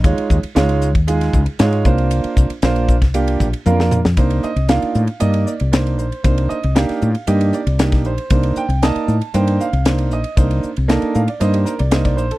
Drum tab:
RD |xx-xxx-xxx-xxx-x|xx-xxx-xxx-x----|xx-xxx-xxx-xxx-x|xx-xxx-xxx-xxx-x|
HH |p-p-p-p-p-p-p-p-|p-p-p-p-p-p-p-p-|p-p-p-p-p-p-p-p-|p-p-p-p-p-p-p-p-|
SD |----o----o--o---|----o--o-----o-o|----o-------o---|----oo------oo--|
T1 |----------------|------------o---|----------------|----------------|
T2 |----------------|--------------o-|----------------|----------------|
BD |o-o----o--o---o-|--o---oo--o-----|o---------------|o------------o--|

RD |xx-xxx-xxx-xxx-x|xx-xxx-xxx-xxx-x|
HH |p-p-p-p-p-p-p-p-|p-p-p-p-p-p-p-p-|
SD |----o-------o---|----o-------o---|
T1 |----------------|----------------|
T2 |----------------|----------------|
BD |o---------------|o------------o--|